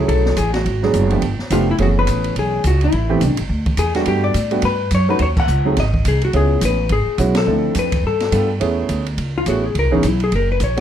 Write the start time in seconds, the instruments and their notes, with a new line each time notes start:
0.00 grand piano F#3 A3 C#4 E4 G#4
0.08 upright bass B1, hollow-body jazz guitar A4, kick, ride
0.26 snare
0.37 upright bass A1, hollow-body jazz guitar G#4, kick, hi-hat pedal, ride
0.54 hollow-body jazz guitar F#4, snare, ride
0.66 upright bass G#1, kick, ride
0.83 grand piano F#3 G#3 B3 D4 G#4, snare
0.94 upright bass F#1, kick, hi-hat pedal, ride
1.10 grand piano F3 A3 B3 D4 G4, ride
1.22 upright bass G1, kick, ride
1.39 muted upright bass stroke, snare
1.50 upright bass F1, grand piano F3 A3 B3 D4 G4, hollow-body jazz guitar F4, kick, hi-hat pedal, ride
1.71 hollow-body jazz guitar E4
1.78 upright bass F#1, grand piano E3 A3 B3 C#4 G#4, hollow-body jazz guitar F#4, kick, ride
1.99 hollow-body jazz guitar B4
2.07 upright bass A1, kick, hi-hat pedal, ride
2.24 ride
2.36 upright bass B1, hollow-body jazz guitar G#4, kick, ride
2.64 upright bass C#2, hollow-body jazz guitar F#4, kick, hi-hat pedal, ride
2.81 hollow-body jazz guitar E4, ride
2.92 upright bass A1, kick, ride
3.09 grand piano E3 A3 B3 C4 G4
3.21 upright bass C2, hollow-body jazz guitar D4, kick, hi-hat pedal, ride
3.30 upright bass A1
3.37 upright bass G1, ride
3.49 upright bass D2, kick
3.66 kick, ride
3.77 upright bass E2, hollow-body jazz guitar G#4, kick, hi-hat pedal, ride
3.95 grand piano G3 A3 B3 D4 F#4, hollow-body jazz guitar F#4, snare, ride
4.06 upright bass G2, hollow-body jazz guitar G4, kick, ride
4.24 hollow-body jazz guitar D5
4.34 upright bass A2, kick, hi-hat pedal, ride
4.51 grand piano G3 A3 B3 D4 F#4, ride
4.62 upright bass G2, hollow-body jazz guitar B4, kick, ride
4.91 upright bass F#2, hollow-body jazz guitar C#5, kick, hi-hat pedal, ride
5.09 grand piano F#3 A3 C#4 D#4 F#4, hollow-body jazz guitar B4
5.19 upright bass D#2, hollow-body jazz guitar C5 C#5, kick, ride
5.37 hollow-body jazz guitar F#5, kick, crash
5.48 upright bass C#2, hi-hat pedal
5.65 grand piano F#3 A3 C4 D#4 G#4
5.77 upright bass G#1, hollow-body jazz guitar D#5, kick, snare, ride
5.94 kick
6.05 upright bass C2, hollow-body jazz guitar G#4, kick, hi-hat pedal, ride
6.22 hollow-body jazz guitar F#4, ride
6.33 upright bass C#2, grand piano G#3 B3 C#4 E4 G#4, hollow-body jazz guitar G#4, kick, ride
6.61 upright bass A1, hollow-body jazz guitar B4, kick, hi-hat pedal, ride
6.89 upright bass G#1, hollow-body jazz guitar G#4, kick, ride
7.06 muted upright bass stroke
7.18 upright bass B1, grand piano G#3 B3 C#4 E4 F#4, kick, hi-hat pedal, ride
7.35 hollow-body jazz guitar A4, snare, ride
7.46 upright bass D2, grand piano F3 C4 D4 E4 A4
7.75 upright bass F2, kick, hi-hat pedal, ride
7.79 hollow-body jazz guitar B4
7.92 kick, ride
8.03 upright bass G2, hollow-body jazz guitar A4, kick
8.20 snare, ride
8.31 upright bass G2, grand piano G3 B3 D4 F4 A4, kick, hi-hat pedal, ride
8.60 upright bass E2, grand piano A3 B3 C#4 E4 G#4, kick, ride
8.89 upright bass D2, kick, hi-hat pedal, ride
9.06 ride
9.18 upright bass C#2, kick, ride
9.38 hollow-body jazz guitar F4
9.46 upright bass A1, grand piano A3 B3 C#4 E4 G#4, hollow-body jazz guitar F#4, kick, hi-hat pedal, ride
9.66 hollow-body jazz guitar G#4
9.75 upright bass C#2, kick, ride
9.79 hollow-body jazz guitar A#4
9.84 upright bass B1
9.91 upright bass G#1, grand piano E3 B3 C#4 D#4 G#4, hollow-body jazz guitar C#4
10.03 upright bass B1, kick, hi-hat pedal, ride
10.07 hollow-body jazz guitar E4
10.20 hollow-body jazz guitar G#4, ride
10.32 upright bass F#1, hollow-body jazz guitar A#4, kick, ride
10.52 hollow-body jazz guitar B4
10.60 upright bass A#1, hollow-body jazz guitar C#5, kick, hi-hat pedal, ride
10.77 grand piano A3 C#4 D4